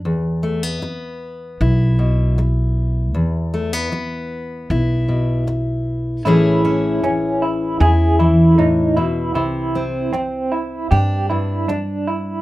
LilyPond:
<<
  \new Staff \with { instrumentName = "Clean electric guitar" } { \time 4/4 \key e \major \tempo 4 = 77 r1 | r1 | e'4 cis'8 e'8 gis'8 e'8 dis'8 e'8 | e'4 c'8 e'8 g'8 e'8 d'8 e'8 | }
  \new Staff \with { instrumentName = "Steel-string acoustic guitar" } { \time 4/4 \key e \major << { r8 a16 b4~ b16 e'2 | r8 a16 b4~ b16 e'2 | <e cis' e' gis'>8 cis'4. e'2 | r8 c'4. d'2 | } \\ { e,4 r4. b,8 r4 | e,4 r4. b,8 r4 | a,4 r4. e8 a,8 b,8 | c4 r4. g,8 r4 | } >> }
  \new Staff \with { instrumentName = "Upright bass" } { \clef bass \time 4/4 \key e \major e,2 b,,2 | e,2 b,,2 | a,,2 e,2 | c,2 g,2 | }
>>